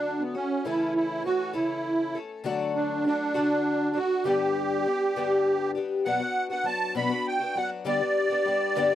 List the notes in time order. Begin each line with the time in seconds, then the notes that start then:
Already playing: D3 F#3 A3 D4 F#4
0.20 B3
0.35 A3 C#4 F#4
0.65 C#3 E3 A3 C#4 E4 A4
0.95 E4
1.24 E3 A3 C#4 F#4 A4
1.53 C#3 E3 A3 C#4 E4 A4
2.15 A3 C#4 A4
2.44 D3 F#3 A3 D4 F#4
2.75 D4
3.05 F#3 A3 D4 F#4
3.34 D3 F#3 A3 D4 F#4
3.93 A3 D4 F#4
4.24 G2 D3 G3 B3 D4 G4
4.84 G3 B3 D4
4.89 G4
5.16 G2 D3 G3 B3 D4 G4
5.75 G3 B3 D4 G4
6.05 B2 F#3 B3 D4 F#4 F#5
6.20 B3 D4 F#4
6.50 B3 D4 F#4 F#5
6.64 F#3 B3 D4 F#4 A5
6.95 B2 F#3 B3 D4 F#4 B5
7.09 B3 D4 F#4
7.28 G5
7.40 B3 D4 F#4
7.55 F#3 B3 D4 F#4 F#5
7.85 G2 D3 G3 B3 D4 G4 D5
7.99 G3 B3 D4 G4
8.30 G3 B3 D4 G4
8.45 G3 B3 D4 G4
8.75 G2 D3 G3 B3 D4 G4
8.90 D4 G4